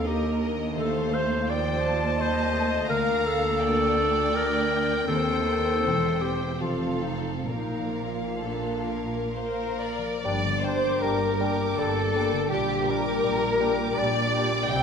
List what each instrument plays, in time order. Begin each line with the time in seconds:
Already playing: double bass section D#2, cello section D#2, harp D#3 A#3 D4 G4
0.04 viola section A#3, clarinet G4, harp A#4, violin section A#4 D#5
0.28 harp D4
0.40 violin section D#5
0.52 harp A#3
0.76 harp D#3, viola section A3, clarinet A4, violin section C5 F5
1.00 harp A3
1.14 clarinet C5
1.24 harp C4
1.46 viola section F3, harp F4, violin section C5 G5, clarinet D5
1.72 harp A4
1.84 violin section A5
1.96 harp F4
2.19 viola section G3, harp A4, clarinet C5, violin section D#5
2.43 harp C4
2.54 viola section A3
2.66 harp A3
2.89 cello section D2, double bass section D2, harp D3, viola section A#3, clarinet A#4, violin section F5 A#5
3.26 clarinet A4
3.37 harp D4
3.61 viola section A#3, harp F4, violin section D5 G5
3.98 viola section D4
4.11 harp F4
4.34 viola section D4, clarinet A#4
4.60 harp D4
4.84 harp A#3
5.07 cello section D#2, double bass section D#2, harp D#3, viola section C4, clarinet A4, violin section C5
5.44 viola section A#3
5.58 harp C5
5.80 double bass section E1, cello section E2, harp E3, viola section C4, violin section C5
6.08 harp C4
6.21 clarinet G4
6.34 harp G4 A#4
6.60 double bass section F1, cello section F2, harp F3, viola section C4, clarinet F4, violin section A4 F5
6.89 harp D#4
7.03 clarinet D#4
7.17 harp D#4 A4
7.47 double bass section A#1, cello section A#2, harp A#2, viola section A#3, clarinet D#4, violin section A#4 F5
7.78 harp F3
8.09 harp A#3
8.38 clarinet D4, harp F4, violin section A4
8.70 harp A#4
8.85 violin section A#4
9.03 harp F4
9.35 violin section A#4 C5, harp A#4, flute A#4
9.67 harp A#3
9.81 violin section D5
9.98 harp F3
10.24 double bass section G1, cello section G2, harp G2, bassoon G3, french horn section G3 D4, clarinet D4, violin section D5, flute D5
10.45 harp D3
10.62 bassoon G3, viola section A#3 G4, harp A#3, clarinet D4, violin section C5 D6, flute C5
10.99 double bass section G1, cello section G2, clarinet D4, violin section A#4, flute A#4, harp D5
11.03 bassoon G3
11.39 bassoon G3, viola section A#3 G4, clarinet D4, harp G5, violin section D6
11.59 harp D6
11.76 double bass section G1, cello section G2, bassoon G3, clarinet D4, violin section A4, flute A4, harp A#4
12.13 bassoon G3, viola section A#3 G4, clarinet D4, harp G4, violin section D6
12.32 harp D3
12.49 double bass section A#1, harp A#2, cello section A#2, viola section G3 G4, clarinet D4, violin section G4 D6, flute G4
12.53 bassoon G3
12.68 harp A#3
12.86 harp G3, viola section G3 G4, bassoon G3, clarinet D4, violin section A#4 D6
12.90 flute A#4
13.23 double bass section A#1, cello section A#2, bassoon G3, clarinet D4, harp D5
13.59 viola section G3 G4, bassoon G3, clarinet D4, harp G5, violin section D6
13.96 double bass section A#1, cello section A#2, bassoon G3, clarinet D4, harp G4, violin section D5, flute D5
14.16 harp D5
14.34 viola section G3 G4, bassoon G3, clarinet D4, harp G4, violin section D6
14.53 harp A#3
14.70 double bass section C2, harp C3, cello section C3, french horn section G3 C4, bassoon G3, clarinet C4, violin section G5, flute G5